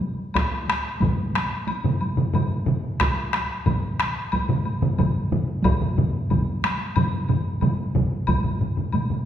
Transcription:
0.02 taiko high medium
0.19 taiko high soft
0.34 taiko rim medium
0.34 taiko loud
0.34 taiko high medium
0.34 high woodblock medium
0.52 taiko high soft
0.68 taiko rim medium
0.68 taiko high medium
0.85 taiko high soft
1.00 taiko medium
1.00 taiko low-mid medium
1.00 taiko mid medium
1.00 taiko high medium
1.00 high woodblock soft
1.17 taiko high soft
1.34 taiko rim medium
1.34 taiko high soft
1.51 taiko high soft
1.67 taiko high medium
1.67 high woodblock medium
1.84 taiko low-mid medium
1.84 taiko mid loud
1.84 taiko high soft
2.01 taiko high soft
2.01 high woodblock soft
2.17 taiko low-mid medium
2.17 taiko mid medium
2.17 taiko high soft
2.34 taiko low-mid loud
2.34 taiko mid loud
2.34 taiko high medium
2.34 high woodblock soft
2.50 taiko high soft
2.66 taiko low-mid medium
2.66 taiko mid medium
2.84 taiko high soft
3.00 taiko rim medium
3.00 taiko loud
3.00 taiko high soft
3.00 high woodblock medium
3.17 taiko high soft
3.33 taiko rim medium
3.33 taiko high soft
3.50 taiko high soft
3.66 taiko medium
3.66 taiko low-mid medium
3.66 taiko mid medium
3.66 taiko high medium
3.66 high woodblock soft
3.83 taiko high soft
4.00 taiko rim medium
4.17 taiko high soft
4.32 taiko medium
4.32 taiko high medium
4.32 high woodblock medium
4.49 taiko low-mid medium
4.49 taiko mid loud
4.49 taiko high soft
4.65 taiko high soft
4.65 high woodblock soft
4.82 taiko low-mid medium
4.82 taiko mid loud
4.82 taiko high soft
4.98 taiko medium
4.98 taiko low-mid medium
4.98 taiko mid loud
4.98 taiko high medium
4.98 high woodblock soft
5.15 taiko high soft
5.31 taiko low-mid medium
5.31 taiko mid loud
5.31 taiko high soft
5.48 taiko high soft
5.64 taiko loud
5.64 taiko low-mid medium
5.64 taiko mid medium
5.64 taiko high medium
5.64 high woodblock medium
5.81 taiko low-mid medium
5.81 taiko mid medium
5.81 taiko high soft
5.98 taiko low-mid loud
5.98 taiko mid medium
5.98 taiko high soft
6.30 taiko medium
6.30 taiko low-mid medium
6.30 taiko mid medium
6.30 taiko high medium
6.30 high woodblock soft
6.48 taiko high soft
6.64 taiko rim medium
6.64 taiko high soft
6.81 taiko high soft
6.96 taiko low-mid loud
6.96 taiko mid loud
6.96 taiko high medium
6.96 high woodblock medium
7.14 taiko high soft
7.29 taiko low-mid medium
7.29 taiko mid medium
7.29 taiko high medium
7.29 high woodblock soft
7.46 taiko high soft
7.61 taiko low-mid medium
7.61 taiko mid loud
7.61 taiko high medium
7.61 high woodblock soft
7.80 taiko high soft
7.95 taiko medium
7.95 taiko low-mid medium
7.95 taiko mid loud
7.95 taiko high soft
8.12 taiko high soft
8.27 taiko medium
8.27 taiko low-mid medium
8.27 taiko mid medium
8.27 taiko high medium
8.27 high woodblock medium
8.44 taiko low-mid medium
8.44 taiko mid medium
8.44 taiko high soft
8.61 taiko low-mid medium
8.61 taiko mid medium
8.77 taiko low-mid medium
8.77 taiko mid medium
8.77 taiko high soft
8.92 taiko low-mid medium
8.92 taiko mid medium
8.92 taiko high medium
8.92 high woodblock soft
9.10 taiko low-mid medium
9.10 taiko mid medium
9.10 taiko high soft

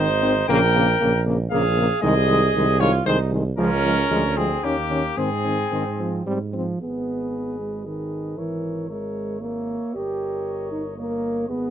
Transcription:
0.00 0.43 G#1 loud
0.00 0.48 D#4 loud
0.00 0.47 C5 loud
0.22 0.34 D#3 medium
0.22 0.34 C4 medium
0.48 0.95 A#1 loud
0.48 0.61 C#3 loud
0.48 0.61 A#3 loud
0.48 1.23 A#4 loud
0.48 1.23 G5 loud
0.75 0.86 C#3 medium
0.75 0.87 A#3 loud
1.00 1.46 A#1 loud
1.00 1.12 C#3 medium
1.00 1.12 A#3 medium
1.26 1.38 C#3 medium
1.26 1.37 A#3 medium
1.51 1.90 A#1 loud
1.51 1.63 C#3 medium
1.51 1.63 A#3 medium
1.51 1.99 G#4 loud
1.51 1.99 F5 loud
1.76 1.89 C#3 medium
1.76 1.88 A#3 medium
2.02 2.49 C2 loud
2.02 2.15 D#3 loud
2.02 2.14 G#3 loud
2.02 2.82 G#4 loud
2.02 2.78 D#5 loud
2.28 2.41 D#3 medium
2.28 2.40 G#3 medium
2.54 3.00 C2 loud
2.54 2.66 D#3 medium
2.54 2.66 G#3 medium
2.79 2.91 D#3 medium
2.79 2.91 G#3 medium
2.79 3.06 F4 loud
2.79 2.92 C#5 loud
3.06 3.52 C2 loud
3.06 3.17 D#3 loud
3.06 3.17 G#3 medium
3.06 3.31 D#4 loud
3.06 3.18 C5 loud
3.32 3.44 D#3 medium
3.32 3.43 G#3 medium
3.57 4.04 C#2 loud
3.57 3.69 F3 loud
3.57 3.70 G#3 medium
3.57 4.39 C#4 loud
3.57 4.38 A#4 loud
3.84 3.96 F3 medium
3.84 3.96 G#3 medium
4.10 4.57 D2 loud
4.10 4.22 F3 medium
4.10 4.23 G#3 medium
4.37 4.49 F3 medium
4.37 4.49 G#3 medium
4.37 4.65 C4 loud
4.37 4.65 G#4 loud
4.63 5.11 D#2 medium
4.63 4.75 D#3 medium
4.63 5.17 A#3 medium
4.63 4.76 C#4 medium
4.63 5.18 G4 loud
4.90 5.02 D#3 medium
4.90 5.03 C#4 medium
5.17 5.65 G#2 loud
5.17 5.30 D#3 medium
5.17 5.30 C4 medium
5.17 6.25 C4 medium
5.17 6.26 G#4 loud
5.44 5.57 D#3 medium
5.44 5.57 C4 medium
5.72 6.20 G#2 medium
5.72 5.84 D#3 medium
5.72 5.84 C4 medium
5.99 6.26 F3 medium
5.99 6.12 C4 medium
6.26 6.75 G#2 medium
6.26 6.39 G3 medium
6.26 6.39 C4 medium
6.53 6.80 F3 medium
6.53 6.65 C4 medium
6.80 8.34 G#1 medium
6.80 7.56 B3 medium
6.80 7.81 G#4 soft
6.80 7.82 B4 soft
6.80 7.81 D#5 soft
7.59 7.87 G#3 medium
7.85 8.37 D#3 medium
7.85 8.40 G#4 soft
7.85 8.40 B4 soft
7.85 8.39 D#5 soft
8.38 9.78 G#1 medium
8.38 8.89 E3 medium
8.38 8.89 A#4 soft
8.38 8.89 C#5 soft
8.38 8.89 E5 soft
8.89 9.43 G#3 medium
8.89 9.41 A#4 soft
8.89 9.41 C#5 soft
8.89 9.41 E5 soft
9.41 9.96 A#3 medium
9.41 9.94 A#4 soft
9.41 9.94 C#5 soft
9.41 9.97 E5 soft
9.94 11.47 G1 medium
9.94 10.71 G4 medium
9.94 10.96 A#4 soft
9.94 10.96 C#5 soft
9.94 10.99 D#5 soft
10.72 10.83 D#4 medium
10.98 11.48 A#3 medium
10.98 11.49 A#4 medium
10.98 11.50 C#5 soft
10.98 11.49 D#5 soft
11.49 11.70 G#1 medium
11.49 11.70 B3 medium
11.49 11.70 G#4 medium
11.49 11.70 B4 medium
11.49 11.70 D#5 medium

